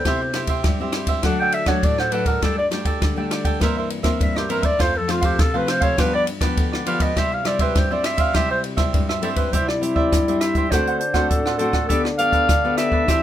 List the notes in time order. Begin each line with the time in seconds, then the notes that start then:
Already playing: C5
0.05 C3 C4 E4 G4 C5 E5, kick, cross-stick, ride
0.22 muted cavaquinho stroke
0.34 C4 E4 G4 C5 E5, cross-stick, ride
0.47 G4 C5 E5, kick, ride
0.64 G2, kick, cross-stick, ride
0.80 C4 E4 G4 C5 E5
0.93 E4 G4 C5 E5, cross-stick, ride
1.07 G4 C5 E5, kick, ride
1.23 D3 F#3 A3 D4 A4 D5 F#5, kick, cross-stick, ride
1.39 A4 D5 F#5 G5
1.52 E5, muted cavaquinho stroke, ride
1.66 F#3 A3 D4 A4 C#5 D5 F#5, kick, cross-stick, ride
1.83 A2 D5, kick, ride
1.98 A4 C5 D5 F#5, cross-stick
2.12 F#3 A3 D4 A4 B4 D5 F#5, ride
2.26 A4 A#4 D5 F#5, kick, ride
2.42 G2 G3 A3 D4 A4 D5 G5, kick, cross-stick, ride
2.58 D5, muted cavaquinho stroke
2.71 G3 A3 D4 A4 D5 G5, cross-stick, ride
2.85 A4 D5 G5, kick, ride
3.02 D3, kick, cross-stick, ride
3.16 G3 A3 D4 A4 D5 G5
3.31 D4 A4 D5 G5, cross-stick, ride
3.45 A4 D5 G5, kick, ride
3.60 G2 E3 A#3 C4 E4 A#4 C5 E5, kick, cross-stick, ride
3.77 A#4 C5 E5
3.90 muted cavaquinho stroke, ride
4.02 E3 A#3 C4 A#4 C5 E5, kick, cross-stick, ride
4.20 G2 E5, kick, ride
4.35 G4 A#4 C5 E5, cross-stick
4.49 E3 A#3 C4 E4 A#4 C5 E5, ride
4.62 A#4 C5 D5 E5, kick, ride
4.79 F2 F3 A3 C4 F4 A4 C5 F5, kick, cross-stick, ride
4.95 A4, muted cavaquinho stroke
5.08 F3 A3 C4 F4 A4 C5 F5, cross-stick, ride
5.21 G4 A4 C5 F5, kick, ride
5.38 C3 A4, kick, cross-stick, ride
5.54 F3 A3 C4 A4 B4 C5 F5
5.66 F4 A4 C5 F5, cross-stick, ride
5.81 A4 C5 C#5 F5, kick, ride
5.98 G2 F3 B3 D4 F4 G4 B4 D5, kick, cross-stick, ride
6.13 G4 B4 D5
6.26 muted cavaquinho stroke, ride
6.41 F3 B3 D4 G4 B4 D5, kick, cross-stick, ride
6.57 D3, kick, ride
6.72 G4 B4 D5, cross-stick
6.86 F3 B3 D4 F4 G4 B4 D5 F5, ride
7.00 G4 B4 D5 D#5, kick, ride
7.16 C3 G3 C4 E4 G4 C5 E5, kick, cross-stick, ride
7.32 F5, muted cavaquinho stroke
7.45 G3 C4 E4 G4 C5 D5 E5, cross-stick, ride
7.59 G4 B4 C5 E5, kick, ride
7.75 G2 C5, kick, cross-stick, ride
7.91 G3 C4 E4 G4 C5 D5 E5
8.03 E4 G4 C5 E5, cross-stick, ride
8.17 G4 C5 E5 F5, kick, ride
8.33 C3 G3 C4 E4 G4 C5 E5, kick, cross-stick, ride
8.50 G4 C5 E5
8.64 muted cavaquinho stroke, ride
8.77 G3 C4 E4 G4 C5 E5, kick, cross-stick, ride
8.93 G2, kick, ride
9.09 G4 C5 E5, cross-stick
9.22 G3 C4 E4 G4 A4 C5 E5, ride
9.36 G4 B4 C5 E5, kick, ride
9.52 C3 G3 C4 E4 G4 C5 E5, kick, closed hi-hat
9.68 D5, muted cavaquinho stroke, cross-stick
9.81 G3 C4 E4 G4 C5 E5, closed hi-hat
9.95 G4 C5 D5 E5, kick
10.12 G2, kick, cross-stick, closed hi-hat
10.28 G3 C4 E4 G4 C5 E5, closed hi-hat
10.40 E4 G4 C5 E5, cross-stick, closed hi-hat
10.55 G4 C5 E5, kick, closed hi-hat
10.70 D3 A3 C4 D4 F#4 A4 C5 F#5, kick, cross-stick, closed hi-hat
10.87 A4 C5 F#5, closed hi-hat
10.98 C5, muted cavaquinho stroke, closed hi-hat
11.14 A3 C4 F#4 A4 C5 F#5, kick, cross-stick, closed hi-hat
11.29 A2 A4, kick, closed hi-hat
11.46 A4 C5 F#5, cross-stick
11.58 A3 C4 D4 F#4 A4 C5 F#5, closed hi-hat
11.73 A4 C5 F#5, kick, cross-stick, closed hi-hat
11.88 D3 B3 D4 G4 A4 B4 D5, kick, closed hi-hat
12.05 muted cavaquinho stroke, cross-stick
12.18 B3 G4 A4 B4 D5 F5, closed hi-hat
12.32 A4 B4 D5, kick, closed hi-hat
12.49 D3, kick, cross-stick, closed hi-hat
12.64 B3 G4 A4 B4 D5
12.78 G4 A4 B4 D5 E5, cross-stick, closed hi-hat
12.92 A4 B4 D5, kick
13.07 E3 C4 D4 E4 G4 C5 E5, kick, cross-stick, closed hi-hat